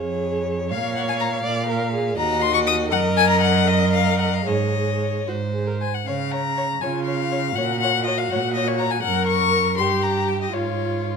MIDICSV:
0, 0, Header, 1, 5, 480
1, 0, Start_track
1, 0, Key_signature, -5, "major"
1, 0, Tempo, 493827
1, 1400, Time_signature, 6, 3, 24, 8
1, 3316, Tempo, 530504
1, 5716, Tempo, 494641
1, 9076, Tempo, 506757
1, 10630, End_track
2, 0, Start_track
2, 0, Title_t, "Violin"
2, 0, Program_c, 0, 40
2, 689, Note_on_c, 0, 77, 62
2, 910, Note_off_c, 0, 77, 0
2, 932, Note_on_c, 0, 78, 70
2, 978, Note_off_c, 0, 78, 0
2, 1053, Note_on_c, 0, 80, 83
2, 1099, Note_off_c, 0, 80, 0
2, 1164, Note_on_c, 0, 82, 71
2, 1242, Note_off_c, 0, 82, 0
2, 2108, Note_on_c, 0, 82, 92
2, 2346, Note_on_c, 0, 84, 108
2, 2361, Note_off_c, 0, 82, 0
2, 2463, Note_off_c, 0, 84, 0
2, 2468, Note_on_c, 0, 85, 100
2, 2516, Note_off_c, 0, 85, 0
2, 2592, Note_on_c, 0, 87, 107
2, 2669, Note_off_c, 0, 87, 0
2, 2834, Note_on_c, 0, 78, 87
2, 2912, Note_off_c, 0, 78, 0
2, 3079, Note_on_c, 0, 80, 102
2, 3194, Note_off_c, 0, 80, 0
2, 3202, Note_on_c, 0, 82, 89
2, 3308, Note_off_c, 0, 82, 0
2, 3314, Note_on_c, 0, 78, 80
2, 3556, Note_on_c, 0, 75, 74
2, 3569, Note_off_c, 0, 78, 0
2, 3780, Note_off_c, 0, 75, 0
2, 3786, Note_on_c, 0, 77, 83
2, 4019, Note_off_c, 0, 77, 0
2, 4025, Note_on_c, 0, 78, 67
2, 4155, Note_on_c, 0, 77, 61
2, 4168, Note_off_c, 0, 78, 0
2, 4270, Note_on_c, 0, 75, 61
2, 4284, Note_off_c, 0, 77, 0
2, 4996, Note_off_c, 0, 75, 0
2, 5486, Note_on_c, 0, 80, 55
2, 5605, Note_on_c, 0, 78, 48
2, 5619, Note_off_c, 0, 80, 0
2, 5716, Note_on_c, 0, 77, 62
2, 5730, Note_off_c, 0, 78, 0
2, 5958, Note_on_c, 0, 82, 78
2, 5972, Note_off_c, 0, 77, 0
2, 6439, Note_on_c, 0, 80, 59
2, 6454, Note_off_c, 0, 82, 0
2, 6667, Note_off_c, 0, 80, 0
2, 6673, Note_on_c, 0, 77, 72
2, 7160, Note_on_c, 0, 78, 72
2, 7174, Note_off_c, 0, 77, 0
2, 7401, Note_off_c, 0, 78, 0
2, 7407, Note_on_c, 0, 78, 86
2, 7641, Note_off_c, 0, 78, 0
2, 7647, Note_on_c, 0, 75, 76
2, 7770, Note_on_c, 0, 77, 65
2, 7784, Note_off_c, 0, 75, 0
2, 7890, Note_on_c, 0, 78, 76
2, 7904, Note_off_c, 0, 77, 0
2, 8114, Note_off_c, 0, 78, 0
2, 8120, Note_on_c, 0, 75, 83
2, 8249, Note_on_c, 0, 73, 71
2, 8264, Note_off_c, 0, 75, 0
2, 8354, Note_on_c, 0, 82, 85
2, 8368, Note_off_c, 0, 73, 0
2, 8479, Note_on_c, 0, 80, 79
2, 8493, Note_off_c, 0, 82, 0
2, 8588, Note_off_c, 0, 80, 0
2, 8593, Note_on_c, 0, 78, 80
2, 8819, Note_off_c, 0, 78, 0
2, 8825, Note_on_c, 0, 85, 97
2, 9298, Note_off_c, 0, 85, 0
2, 9311, Note_on_c, 0, 84, 69
2, 9548, Note_on_c, 0, 82, 73
2, 9562, Note_off_c, 0, 84, 0
2, 9791, Note_on_c, 0, 79, 64
2, 9805, Note_off_c, 0, 82, 0
2, 9911, Note_off_c, 0, 79, 0
2, 9919, Note_on_c, 0, 75, 57
2, 10029, Note_on_c, 0, 73, 54
2, 10043, Note_off_c, 0, 75, 0
2, 10630, Note_off_c, 0, 73, 0
2, 10630, End_track
3, 0, Start_track
3, 0, Title_t, "Violin"
3, 0, Program_c, 1, 40
3, 0, Note_on_c, 1, 73, 50
3, 688, Note_on_c, 1, 77, 57
3, 702, Note_off_c, 1, 73, 0
3, 2106, Note_off_c, 1, 77, 0
3, 2112, Note_on_c, 1, 75, 68
3, 2813, Note_off_c, 1, 75, 0
3, 2836, Note_on_c, 1, 75, 75
3, 4243, Note_off_c, 1, 75, 0
3, 4275, Note_on_c, 1, 73, 46
3, 5005, Note_on_c, 1, 72, 43
3, 5019, Note_off_c, 1, 73, 0
3, 5534, Note_off_c, 1, 72, 0
3, 5725, Note_on_c, 1, 73, 45
3, 5803, Note_off_c, 1, 73, 0
3, 5970, Note_on_c, 1, 73, 36
3, 6048, Note_off_c, 1, 73, 0
3, 6211, Note_on_c, 1, 73, 42
3, 6289, Note_off_c, 1, 73, 0
3, 6455, Note_on_c, 1, 73, 42
3, 6532, Note_off_c, 1, 73, 0
3, 6693, Note_on_c, 1, 73, 43
3, 6771, Note_off_c, 1, 73, 0
3, 6931, Note_on_c, 1, 73, 51
3, 7009, Note_off_c, 1, 73, 0
3, 7176, Note_on_c, 1, 73, 50
3, 7254, Note_off_c, 1, 73, 0
3, 7428, Note_on_c, 1, 73, 52
3, 7505, Note_off_c, 1, 73, 0
3, 7658, Note_on_c, 1, 73, 53
3, 7736, Note_off_c, 1, 73, 0
3, 7900, Note_on_c, 1, 73, 51
3, 7978, Note_off_c, 1, 73, 0
3, 8144, Note_on_c, 1, 73, 52
3, 8222, Note_off_c, 1, 73, 0
3, 8375, Note_on_c, 1, 73, 50
3, 8452, Note_off_c, 1, 73, 0
3, 8617, Note_on_c, 1, 70, 54
3, 9329, Note_on_c, 1, 67, 54
3, 9343, Note_off_c, 1, 70, 0
3, 10030, Note_off_c, 1, 67, 0
3, 10035, Note_on_c, 1, 65, 43
3, 10630, Note_off_c, 1, 65, 0
3, 10630, End_track
4, 0, Start_track
4, 0, Title_t, "Viola"
4, 0, Program_c, 2, 41
4, 0, Note_on_c, 2, 68, 54
4, 645, Note_off_c, 2, 68, 0
4, 679, Note_on_c, 2, 73, 70
4, 1381, Note_off_c, 2, 73, 0
4, 1394, Note_on_c, 2, 74, 73
4, 1630, Note_off_c, 2, 74, 0
4, 1636, Note_on_c, 2, 70, 70
4, 1869, Note_off_c, 2, 70, 0
4, 1873, Note_on_c, 2, 68, 63
4, 2106, Note_off_c, 2, 68, 0
4, 2118, Note_on_c, 2, 66, 75
4, 2816, Note_off_c, 2, 66, 0
4, 2827, Note_on_c, 2, 70, 82
4, 3534, Note_off_c, 2, 70, 0
4, 3548, Note_on_c, 2, 70, 81
4, 4253, Note_off_c, 2, 70, 0
4, 4263, Note_on_c, 2, 68, 52
4, 4931, Note_off_c, 2, 68, 0
4, 4996, Note_on_c, 2, 66, 58
4, 5069, Note_off_c, 2, 66, 0
4, 5237, Note_on_c, 2, 68, 42
4, 5360, Note_on_c, 2, 70, 47
4, 5374, Note_off_c, 2, 68, 0
4, 5474, Note_off_c, 2, 70, 0
4, 5480, Note_on_c, 2, 72, 48
4, 5552, Note_off_c, 2, 72, 0
4, 6447, Note_on_c, 2, 65, 54
4, 7129, Note_off_c, 2, 65, 0
4, 7167, Note_on_c, 2, 66, 66
4, 8570, Note_off_c, 2, 66, 0
4, 8596, Note_on_c, 2, 70, 69
4, 9297, Note_off_c, 2, 70, 0
4, 9315, Note_on_c, 2, 67, 57
4, 10019, Note_off_c, 2, 67, 0
4, 10032, Note_on_c, 2, 65, 42
4, 10630, Note_off_c, 2, 65, 0
4, 10630, End_track
5, 0, Start_track
5, 0, Title_t, "Cello"
5, 0, Program_c, 3, 42
5, 0, Note_on_c, 3, 41, 54
5, 693, Note_on_c, 3, 46, 55
5, 708, Note_off_c, 3, 41, 0
5, 1392, Note_off_c, 3, 46, 0
5, 1398, Note_on_c, 3, 46, 65
5, 2096, Note_off_c, 3, 46, 0
5, 2115, Note_on_c, 3, 39, 72
5, 2825, Note_on_c, 3, 42, 85
5, 2839, Note_off_c, 3, 39, 0
5, 4261, Note_off_c, 3, 42, 0
5, 4267, Note_on_c, 3, 44, 58
5, 4980, Note_off_c, 3, 44, 0
5, 4994, Note_on_c, 3, 44, 49
5, 5517, Note_off_c, 3, 44, 0
5, 5719, Note_on_c, 3, 49, 51
5, 6360, Note_off_c, 3, 49, 0
5, 6449, Note_on_c, 3, 49, 55
5, 7082, Note_off_c, 3, 49, 0
5, 7170, Note_on_c, 3, 46, 62
5, 7805, Note_off_c, 3, 46, 0
5, 7896, Note_on_c, 3, 46, 67
5, 8519, Note_off_c, 3, 46, 0
5, 8602, Note_on_c, 3, 42, 65
5, 9317, Note_on_c, 3, 43, 57
5, 9331, Note_off_c, 3, 42, 0
5, 10034, Note_off_c, 3, 43, 0
5, 10039, Note_on_c, 3, 44, 46
5, 10630, Note_off_c, 3, 44, 0
5, 10630, End_track
0, 0, End_of_file